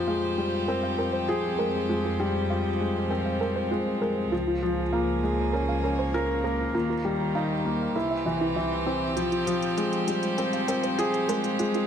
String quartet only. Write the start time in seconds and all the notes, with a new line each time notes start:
Already playing: F3 A#3 G4 C5
4.52 A#3
4.64 G#4
5.41 C#5
6.75 D#3
7.20 G4
7.29 C5
7.96 E3
8.36 C4
9.17 F3